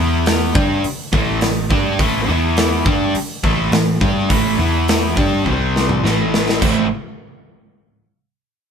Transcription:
0.00 0.51 E2 loud
0.00 0.54 E3 medium
0.00 0.54 B3 loud
0.00 0.54 E4 loud
0.26 snare loud
0.26 open hi-hat medium
0.55 0.82 G2 medium
0.55 0.83 G3 medium
0.55 0.83 D4 loud
0.55 0.84 G4 loud
0.55 kick loud
0.84 muted overdriven electric guitar stroke medium
0.84 muted picked electric bass stroke soft
0.84 open hi-hat medium
1.13 1.40 A1 medium
1.13 1.40 A2 medium
1.13 1.41 E3 medium
1.13 1.42 A3 medium
1.13 kick loud
1.41 1.69 A1 medium
1.41 1.65 A2 medium
1.41 1.65 E3 medium
1.41 snare loud
1.41 open hi-hat soft
1.70 1.97 G2 loud
1.70 1.98 G3 medium
1.70 1.99 D4 medium
1.70 1.99 G4 medium
1.70 kick loud
1.99 2.26 A1 loud
1.99 2.28 A2 medium
1.99 2.28 E3 medium
1.99 2.29 A3 loud
1.99 kick loud
1.99 open hi-hat medium
2.28 2.82 E2 loud
2.28 2.85 E3 loud
2.28 2.85 B3 loud
2.28 2.86 E4 medium
2.57 snare loud
2.57 open hi-hat medium
2.85 3.13 G2 medium
2.85 3.14 G3 medium
2.85 3.14 D4 loud
2.85 3.14 G4 loud
2.85 kick loud
3.15 muted overdriven electric guitar stroke medium
3.15 muted picked electric bass stroke soft
3.15 open hi-hat medium
3.44 3.71 A1 loud
3.44 3.71 A2 medium
3.44 3.72 E3 loud
3.44 3.72 A3 medium
3.44 kick loud
3.72 3.99 A1 medium
3.72 3.96 A2 medium
3.72 3.96 E3 medium
3.72 snare loud
3.72 open hi-hat soft
4.01 4.28 G2 medium
4.01 4.29 G3 medium
4.01 4.30 D4 medium
4.01 4.30 G4 medium
4.01 kick medium
4.29 4.57 A1 loud
4.29 4.58 A2 medium
4.29 4.57 E3 loud
4.29 4.59 A3 medium
4.29 kick loud
4.29 open hi-hat medium
4.58 5.13 E2 loud
4.58 5.16 E3 medium
4.58 5.16 B3 medium
4.58 5.16 E4 loud
4.88 snare loud
4.88 open hi-hat medium
5.16 5.44 G2 medium
5.16 5.45 G3 medium
5.16 5.47 D4 medium
5.16 5.46 G4 medium
5.16 kick loud
5.45 6.00 C2 medium
5.45 6.03 C3 loud
5.45 6.03 G3 medium
5.45 6.04 C4 loud
5.45 kick medium
5.76 snare medium
5.89 mid tom medium
6.03 6.58 A1 medium
6.03 6.60 A2 medium
6.03 6.60 E3 loud
6.03 6.61 A3 medium
6.03 snare medium
6.34 snare loud
6.49 snare medium
6.61 6.89 A1 medium
6.61 6.85 A2 medium
6.61 6.85 E3 medium
6.61 6.85 A3 medium
6.61 6.85 C4 loud
6.61 6.86 E4 medium
6.61 kick loud
6.61 crash medium

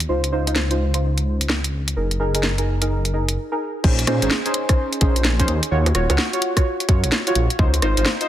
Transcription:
0.00 closed hi-hat medium
0.09 1.95 C#2 medium
0.09 0.20 D#4 medium
0.09 0.20 F4 medium
0.09 0.20 C5 medium
0.24 closed hi-hat medium
0.32 0.45 D#4 medium
0.32 0.45 F4 medium
0.32 0.45 C5 loud
0.47 0.59 D#4 medium
0.47 0.59 F4 medium
0.47 0.59 C5 medium
0.47 closed hi-hat medium
0.56 snare loud
0.71 0.91 D#4 medium
0.71 0.91 F4 medium
0.71 0.91 C5 medium
0.71 closed hi-hat soft
0.94 1.94 D#4 medium
0.94 1.94 F4 medium
0.94 1.94 C5 medium
0.94 closed hi-hat medium
1.18 closed hi-hat soft
1.41 closed hi-hat medium
1.50 snare loud
1.64 closed hi-hat medium
1.88 closed hi-hat medium
1.96 3.37 F#1 medium
1.96 2.08 D#4 medium
1.96 2.08 G#4 medium
1.96 2.08 A#4 medium
2.11 closed hi-hat medium
2.20 2.33 D#4 medium
2.20 2.33 G#4 medium
2.20 2.32 A#4 loud
2.35 2.46 D#4 medium
2.35 2.46 G#4 medium
2.35 2.46 A#4 medium
2.35 closed hi-hat medium
2.43 snare loud
2.58 2.78 D#4 medium
2.58 2.78 G#4 medium
2.58 2.78 A#4 medium
2.58 closed hi-hat soft
2.81 3.12 D#4 medium
2.81 3.12 G#4 medium
2.81 3.12 A#4 medium
2.81 closed hi-hat medium
3.05 closed hi-hat soft
3.13 3.48 D#4 medium
3.13 3.48 G#4 medium
3.13 3.48 A#4 medium
3.29 closed hi-hat medium
3.52 3.63 D#4 loud
3.52 3.63 G#4 medium
3.52 3.63 A#4 loud
3.84 4.05 A#1 loud
3.84 3.95 C#4 medium
3.84 3.95 D#4 medium
3.84 3.95 G#4 medium
3.84 3.95 C5 medium
3.84 kick loud
3.84 crash loud
3.99 closed hi-hat medium
4.07 4.20 A#2 medium
4.07 4.20 C#4 medium
4.07 4.20 D#4 medium
4.07 4.20 G#4 medium
4.07 4.20 C5 loud
4.07 cross-stick medium
4.07 closed hi-hat loud
4.22 4.29 G#1 loud
4.22 4.34 C#4 medium
4.22 4.34 D#4 medium
4.22 4.34 G#4 medium
4.22 4.34 C5 medium
4.22 closed hi-hat medium
4.31 snare loud
4.46 4.66 C#4 medium
4.46 4.66 D#4 medium
4.46 4.66 G#4 medium
4.46 4.66 C5 medium
4.46 closed hi-hat soft
4.54 closed hi-hat loud
4.69 4.99 C#4 medium
4.69 4.99 D#4 medium
4.69 4.99 G#4 medium
4.69 4.99 C5 medium
4.69 kick loud
4.69 cross-stick medium
4.69 closed hi-hat medium
4.93 closed hi-hat soft
5.01 5.46 A#1 medium
5.01 5.36 C#4 medium
5.01 5.36 D#4 medium
5.01 5.36 G#4 medium
5.01 5.36 C5 medium
5.01 kick loud
5.01 closed hi-hat loud
5.16 closed hi-hat medium
5.25 snare loud
5.39 5.47 C#4 loud
5.39 5.47 D#4 medium
5.39 5.47 G#4 medium
5.39 5.47 C5 loud
5.39 kick medium
5.39 closed hi-hat medium
5.48 5.60 D#2 loud
5.48 closed hi-hat medium
5.63 closed hi-hat medium
5.71 5.92 D#2 loud
5.71 5.82 F4 medium
5.71 5.82 F#4 medium
5.71 5.82 C#5 medium
5.86 closed hi-hat medium
5.86 high bongo medium
5.95 6.07 D#1 medium
5.95 6.08 F4 medium
5.95 6.08 F#4 medium
5.95 6.08 C#5 loud
5.95 cross-stick medium
5.95 closed hi-hat loud
6.10 6.17 C#2 loud
6.10 6.21 F4 medium
6.10 6.21 F#4 medium
6.10 6.21 C#5 medium
6.10 closed hi-hat medium
6.10 high bongo medium
6.18 snare loud
6.33 6.53 F4 medium
6.33 6.53 F#4 medium
6.33 6.53 C#5 medium
6.33 closed hi-hat soft
6.42 closed hi-hat loud
6.57 6.87 F4 medium
6.57 6.87 F#4 medium
6.57 6.87 C#5 medium
6.57 kick medium
6.57 cross-stick medium
6.57 closed hi-hat medium
6.80 closed hi-hat soft
6.88 7.05 F#2 loud
6.88 7.23 F4 medium
6.88 7.23 F#4 medium
6.88 7.23 C#5 medium
6.88 kick loud
6.88 closed hi-hat loud
7.03 7.11 A#1 loud
7.03 closed hi-hat medium
7.12 snare loud
7.27 7.38 F4 loud
7.27 7.38 F#4 medium
7.27 7.38 C#5 loud
7.27 closed hi-hat medium
7.35 7.48 A#1 medium
7.35 closed hi-hat loud
7.50 closed hi-hat medium
7.59 7.80 C#2 loud
7.59 7.70 D#4 medium
7.59 7.70 F4 medium
7.59 7.70 C5 medium
7.59 kick loud
7.74 closed hi-hat medium
7.82 7.95 G#1 medium
7.82 7.95 D#4 medium
7.82 7.95 F4 medium
7.82 7.95 C5 loud
7.82 cross-stick medium
7.82 closed hi-hat loud
7.97 8.04 G#1 loud
7.97 8.09 D#4 medium
7.97 8.09 F4 medium
7.97 8.09 C5 medium
7.97 closed hi-hat medium
8.06 snare loud
8.21 8.28 D#4 medium
8.21 8.28 F4 medium
8.21 8.28 C5 medium
8.21 closed hi-hat soft

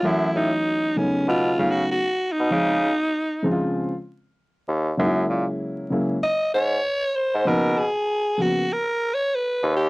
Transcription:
0.02 0.29 F#2 loud
0.02 0.91 E3 medium
0.02 0.91 F#3 medium
0.02 0.92 A3 medium
0.02 0.92 C#4 soft
0.02 0.12 E4 soft
0.06 0.39 E4 loud
0.11 0.95 F#4 medium
0.35 0.50 A2 medium
0.35 0.99 D#4 loud
0.96 1.56 C#3 medium
0.96 1.57 F#3 medium
0.96 1.57 A3 medium
0.96 1.58 B3 medium
0.96 1.28 C#4 medium
0.96 1.58 D#4 medium
1.28 1.53 B2 loud
1.28 1.73 F4 loud
1.58 1.96 C#3 medium
1.58 1.84 C#3 medium
1.58 1.97 F#3 medium
1.58 1.97 A3 medium
1.58 1.97 B3 medium
1.58 1.98 D#4 medium
1.71 1.90 F#4 medium
1.91 2.34 F#4 loud
2.32 3.86 D#4 loud
2.39 2.49 B2 medium
2.50 2.74 C#3 medium
2.50 2.92 C#3 loud
2.50 2.75 F3 medium
2.50 2.75 G#3 medium
2.50 2.75 C4 medium
2.50 2.75 D#4 medium
3.43 3.89 C#3 medium
3.43 3.89 F3 medium
3.43 3.90 G#3 medium
3.43 3.90 C4 medium
3.43 3.52 E4 medium
3.51 3.94 F4 loud
4.68 4.93 D#2 loud
4.97 5.24 F#2 loud
4.97 5.86 C#3 medium
4.97 5.86 F#3 medium
4.97 5.87 G#3 medium
4.97 5.87 A#3 medium
4.97 5.07 D#4 medium
5.06 5.90 E4 medium
5.29 5.45 A#2 medium
5.90 6.14 C#3 medium
5.90 6.15 F#3 medium
5.90 6.15 G#3 medium
5.90 6.15 A#3 medium
5.90 6.16 E4 medium
6.23 6.52 D#5 loud
6.54 6.79 G#2 medium
6.54 7.17 C#5 loud
7.16 7.49 C5 loud
7.34 7.44 G#2 loud
7.45 7.87 B2 loud
7.45 7.69 C#3 medium
7.45 7.69 F3 medium
7.45 7.70 A#3 medium
7.45 7.70 B3 medium
7.45 7.70 D#4 medium
7.45 7.80 A#4 loud
7.78 8.43 G#4 loud
8.37 8.62 C#3 medium
8.37 8.62 F3 medium
8.37 8.62 A#3 medium
8.37 8.63 B3 medium
8.37 8.63 F#4 medium
8.42 8.74 F#4 medium
8.73 9.16 A#4 medium
9.14 9.37 C#5 medium
9.35 9.75 B4 loud
9.63 9.89 D#2 loud
9.76 9.89 G4 loud

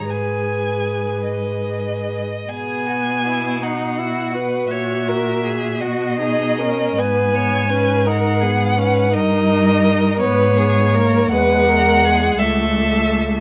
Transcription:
0.00 0.11 C#5 soft
0.00 0.11 A#5 medium
0.10 2.23 G#2 soft
0.10 2.23 G#4 soft
0.10 2.23 B4 soft
0.10 1.26 G#5 soft
1.27 2.50 D#5 soft
2.49 4.67 B2 soft
2.49 3.64 B3 soft
2.49 2.88 G#4 soft
2.49 3.64 G#5 medium
2.86 3.27 F#4 soft
3.25 3.64 E4 soft
3.62 3.99 D#4 soft
3.62 4.00 D#4 soft
3.62 4.70 F#5 soft
3.98 4.35 E4 soft
3.98 4.36 F#4 soft
4.34 5.80 F#4 soft
4.34 4.72 B4 medium
4.70 5.82 A#2 soft
4.70 5.10 C#5 soft
4.70 5.82 E5 medium
5.08 5.45 A#4 soft
5.44 5.83 G#4 soft
5.81 6.98 B2 medium
5.81 6.19 F#4 soft
5.81 7.01 D#5 medium
6.20 6.61 D#4 soft
6.20 6.60 G#4 soft
6.58 7.00 C#4 soft
6.58 6.99 A#4 medium
6.98 9.16 G#2 medium
6.98 7.35 B3 medium
6.98 7.36 B4 medium
6.98 8.08 G#5 medium
7.35 7.70 B3 medium
7.35 7.71 C#5 medium
7.70 8.08 C#4 medium
7.70 8.07 B4 medium
8.05 8.44 D#4 soft
8.05 8.43 A#4 medium
8.05 9.15 F#5 medium
8.41 8.80 B3 medium
8.41 8.78 G#4 medium
8.78 9.13 C#4 medium
8.78 9.14 B4 medium
9.13 10.23 G2 medium
9.13 10.18 D#4 medium
9.13 10.22 A#4 medium
9.13 10.19 D#5 medium
10.20 11.32 G#2 medium
10.20 10.56 B3 medium
10.20 10.58 B4 medium
10.20 11.29 C#5 medium
10.57 10.97 B3 medium
10.57 10.96 G#4 medium
10.94 11.34 A#3 medium
10.94 11.32 A#4 medium
11.30 12.37 E2 medium
11.30 12.41 G#3 medium
11.30 11.70 B4 medium
11.30 12.40 F#5 loud
11.68 12.07 A#4 medium
12.05 12.40 G#4 medium
12.39 13.40 C#2 medium
12.39 13.40 A3 medium
12.39 13.40 A4 medium
12.39 13.40 E5 medium

